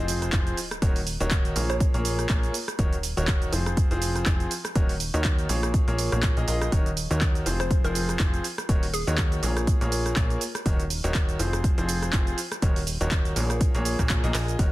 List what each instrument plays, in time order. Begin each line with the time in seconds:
Already playing: analog synth bass F1, grand piano F3 C4 F4 G#4 C5, sub drop
0.08 open hi-hat, shaker
0.22 cross-stick, closed hi-hat, shaker
0.32 analog synth bass F1, grand piano F3 C4 F4 G#4 C5, kick, clap, closed hi-hat, shaker
0.47 closed hi-hat, shaker
0.57 open hi-hat, shaker
0.71 cross-stick, closed hi-hat, shaker
0.82 analog synth bass D#1, grand piano D#3 D#4 F#4 A#4 C#5, kick, closed hi-hat, shaker
0.96 open hi-hat, shaker
1.07 open hi-hat, shaker
1.20 analog synth bass D#1, grand piano D#3 D#4 F#4 A#4 C#5, closed hi-hat, shaker
1.31 kick, clap, closed hi-hat, shaker
1.45 closed hi-hat, shaker
1.56 analog synth bass A#1, grand piano A#3 F4 G#4 A#4 C#5, open hi-hat, shaker
1.70 synth pluck C#5, cross-stick, closed hi-hat, shaker
1.80 kick, closed hi-hat, shaker
1.94 analog synth bass A#1, grand piano A#3 F4 G#4 A#4 C#5, closed hi-hat, shaker
2.05 open hi-hat, shaker
2.19 cross-stick, closed hi-hat, shaker
2.29 analog synth bass A#1, grand piano A#3 F4 A#4 C#5, kick, clap, closed hi-hat, shaker
2.43 closed hi-hat, shaker
2.54 open hi-hat, shaker
2.68 cross-stick, closed hi-hat, shaker
2.79 analog synth bass D#1, grand piano D#3 D#4 F#4 A#4 C#5, kick, closed hi-hat, shaker
2.93 closed hi-hat, shaker
3.03 open hi-hat, shaker
3.17 analog synth bass D#1, grand piano D#3 D#4 F#4 A#4 C#5, closed hi-hat, shaker
3.28 kick, clap, closed hi-hat, shaker
3.42 closed hi-hat, shaker
3.53 analog synth bass F1, grand piano F3 C4 F4 G#4 C5, open hi-hat, shaker
3.66 cross-stick, closed hi-hat, shaker
3.77 kick, closed hi-hat, shaker
3.91 analog synth bass F1, grand piano F3 C4 F4 G#4 C5, closed hi-hat, shaker
4.02 open hi-hat, shaker
4.16 cross-stick, closed hi-hat, shaker
4.26 analog synth bass F1, grand piano F3 C4 G#4 C5, kick, clap, closed hi-hat, shaker
4.40 closed hi-hat, shaker
4.51 open hi-hat, shaker
4.65 cross-stick, closed hi-hat, shaker
4.75 analog synth bass D#1, grand piano D#3 D#4 F#4 A#4 C#5, kick, closed hi-hat, shaker
4.89 open hi-hat, shaker
5.00 open hi-hat, shaker
5.14 analog synth bass D#2, grand piano D#3 D#4 F#4 A#4 C#5, closed hi-hat, shaker
5.24 kick, clap, closed hi-hat, shaker
5.39 closed hi-hat, shaker
5.49 analog synth bass A#1, grand piano A#3 F4 G#4 A#4 C#5, open hi-hat, shaker
5.63 cross-stick, closed hi-hat, shaker
5.74 kick, closed hi-hat, shaker
5.88 analog synth bass A#1, grand piano A#3 F4 G#4 A#4 C#5, closed hi-hat, shaker
5.99 open hi-hat, shaker
6.12 analog synth bass A#1, grand piano A#3 F4 G#4 A#4 C#5, cross-stick, closed hi-hat, shaker
6.23 kick, clap, closed hi-hat, shaker
6.37 analog synth bass A#1, grand piano A#3 F4 G#4 A#4 D#5, closed hi-hat, shaker
6.48 analog synth bass A#1, grand piano F4 G#4 A#4 D#5, open hi-hat, shaker
6.61 cross-stick, closed hi-hat, shaker
6.72 analog synth bass D#1, grand piano D#3 D#4 F#4 A#4 C#5, kick, closed hi-hat, shaker
6.86 closed hi-hat, shaker
6.97 open hi-hat, shaker
7.11 analog synth bass D#2, grand piano D#3 D#4 F#4 A#4 C#5, closed hi-hat, shaker
7.21 kick, clap, closed hi-hat, shaker
7.35 closed hi-hat, shaker
7.46 analog synth bass F1, grand piano F3 C4 F4 G#4 C5, open hi-hat, shaker
7.60 synth pluck C5, cross-stick, closed hi-hat, shaker
7.71 kick, closed hi-hat, shaker
7.84 analog synth bass F1, grand piano F3 C4 F4 G#4 C5, synth pluck A#4, closed hi-hat, shaker
7.95 open hi-hat, shaker
8.09 cross-stick, closed hi-hat, shaker
8.19 analog synth bass F1, grand piano F3 C4 F4 C5, kick, clap, closed hi-hat, shaker
8.34 closed hi-hat, shaker
8.44 open hi-hat, shaker
8.58 cross-stick, closed hi-hat, shaker
8.69 analog synth bass D#1, grand piano D#3 D#4 F#4 A#4 C#5, kick, closed hi-hat, shaker
8.83 open hi-hat, shaker
8.94 synth pluck G#4, open hi-hat, shaker
9.07 analog synth bass D#2, grand piano D#3 D#4 F#4 A#4 C#5, closed hi-hat, shaker
9.18 kick, clap, closed hi-hat, shaker
9.32 closed hi-hat, shaker
9.43 analog synth bass A#1, grand piano A#3 F4 G#4 A#4 C#5, open hi-hat, shaker
9.57 cross-stick, closed hi-hat, shaker
9.67 kick, closed hi-hat, shaker
9.81 analog synth bass A#1, grand piano A#3 F4 G#4 A#4 C#5, closed hi-hat, shaker
9.92 open hi-hat, shaker
10.06 cross-stick, closed hi-hat, shaker
10.16 analog synth bass A#1, grand piano A#3 F4 G#4 A#4 C#5, kick, clap, closed hi-hat, shaker
10.30 closed hi-hat, shaker
10.41 open hi-hat, shaker
10.55 cross-stick, closed hi-hat, shaker
10.66 analog synth bass D#1, grand piano D#3 D#4 F#4 A#4 C#5, kick, closed hi-hat, shaker
10.80 closed hi-hat, shaker
10.90 open hi-hat, shaker
11.04 analog synth bass D#1, grand piano D#3 D#4 F#4 A#4 C#5, closed hi-hat, shaker
11.14 kick, clap, closed hi-hat, shaker
11.29 closed hi-hat, shaker
11.39 analog synth bass F1, grand piano F3 C4 F4 G#4 C5, open hi-hat, shaker
11.53 cross-stick, closed hi-hat, shaker
11.64 kick, closed hi-hat, shaker
11.78 analog synth bass F1, grand piano F3 C4 F4 G#4 C5, closed hi-hat, shaker
11.89 open hi-hat, shaker
12.02 cross-stick, closed hi-hat, shaker
12.13 analog synth bass F1, grand piano F3 C4 F4 G#4 C5, kick, clap, closed hi-hat, shaker
12.27 closed hi-hat, shaker
12.38 open hi-hat, shaker
12.52 cross-stick, closed hi-hat, shaker
12.62 analog synth bass D#1, grand piano D#3 D#4 F#4 A#4 C#5, kick, closed hi-hat, shaker
12.76 open hi-hat, shaker
12.87 open hi-hat, shaker
13.01 analog synth bass D#1, grand piano D#3 D#4 F#4 A#4 C#5, closed hi-hat, shaker
13.11 kick, clap, closed hi-hat, shaker
13.25 closed hi-hat, shaker
13.36 analog synth bass A#1, grand piano A#3 F4 G#4 A#4 C#5, open hi-hat, shaker
13.50 cross-stick, closed hi-hat, shaker
13.61 kick, closed hi-hat, shaker
13.75 analog synth bass A#1, grand piano A#3 F4 G#4 A#4 C#5, closed hi-hat, shaker
13.85 open hi-hat, shaker
13.99 analog synth bass A#1, grand piano A#3 F4 G#4 A#4 C#5, kick, cross-stick, closed hi-hat, shaker
14.10 kick, clap, closed hi-hat, shaker
14.24 analog synth bass A#1, grand piano A#3 F4 G#4 A#4 D#5, closed hi-hat, shaker
14.35 analog synth bass A#1, grand piano F4 G#4 A#4 D#5, clap, open hi-hat, shaker
14.48 closed hi-hat, shaker
14.59 analog synth bass D#1, grand piano D#3 D#4 F#4 A#4 C#5, kick, closed hi-hat, ride, shaker